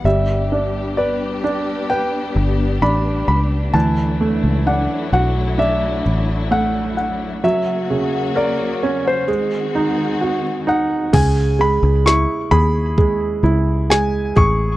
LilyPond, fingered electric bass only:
\new Staff \with { instrumentName = "Fingered electric bass" } { \clef bass \time 4/4 \key g \lydian \tempo 4 = 65 g,,2~ g,,8 g,,8 a,,8 cis,8 | d,8. cis,8 r16 b,,4 a,,4. | r1 | \key cis \minor cis,8. cis,8 r16 dis,4 cis,4 a,,8 | }